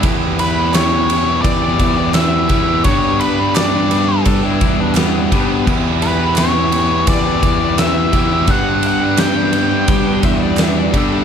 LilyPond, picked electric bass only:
\new Staff \with { instrumentName = "Picked electric bass" } { \clef bass \time 4/4 \key e \dorian \tempo 4 = 85 e,2 e,8 e,4 e,8 | g,2 g,8 e,4 g,8 | e,2 e,8 e,4 e,8 | g,2 g,8 e,4 g,8 | }